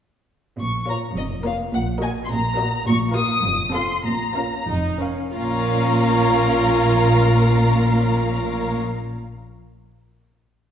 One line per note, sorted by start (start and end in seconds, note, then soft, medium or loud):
0.59 1.05 A#1 soft
0.59 1.05 A#2 soft
0.59 0.87 C#6 medium
0.88 1.10 A#3 soft
0.88 1.10 F4 soft
0.88 1.09 A#4 soft
0.88 1.09 C#5 soft
0.88 0.97 A#5 medium
1.16 1.61 F1 medium
1.16 1.61 F2 medium
1.16 1.25 D#5 medium
1.44 1.66 A#3 soft
1.44 1.66 F4 soft
1.44 1.66 A#4 soft
1.44 1.66 C#5 soft
1.44 1.54 F5 soft
1.73 2.18 A#1 medium
1.73 2.17 A#2 medium
1.73 1.82 F#5 medium
2.00 2.21 A#3 medium
2.00 2.21 F#4 medium
2.00 2.21 A#4 medium
2.00 2.21 D#5 soft
2.00 2.10 G#5 medium
2.24 2.73 A#2 medium
2.24 2.30 C6 medium
2.30 2.74 A#1 medium
2.30 2.86 A#5 medium
2.56 2.78 A#3 medium
2.56 2.78 F#4 medium
2.56 2.78 A#4 medium
2.56 2.78 D#5 medium
2.85 3.31 A#1 medium
2.85 3.31 A#2 medium
2.85 2.95 C#6 medium
3.14 3.36 A#3 medium
3.14 3.36 F4 medium
3.14 3.36 A#4 medium
3.14 3.36 F5 medium
3.14 3.72 D#6 medium
3.43 3.91 F1 medium
3.43 3.91 F2 medium
3.73 3.96 C4 medium
3.73 3.96 F4 medium
3.73 3.96 A4 medium
3.73 3.96 F5 medium
3.73 4.04 C6 medium
4.04 4.54 A#1 medium
4.04 4.54 A#2 medium
4.04 4.66 A#5 medium
4.35 4.59 C#4 soft
4.35 4.59 F4 soft
4.35 4.59 A#4 medium
4.35 4.59 F5 soft
4.67 5.19 F1 medium
4.67 5.20 F2 medium
4.67 4.97 D#4 medium
5.00 5.32 C#4 soft
5.00 5.25 A#4 soft
5.00 5.25 F5 soft
5.33 8.75 A#1 medium
5.33 8.76 A#2 medium
5.33 8.75 C#4 medium
5.33 8.75 F4 medium
5.33 8.75 A#4 medium
5.33 8.75 F5 medium
5.33 8.76 A#5 medium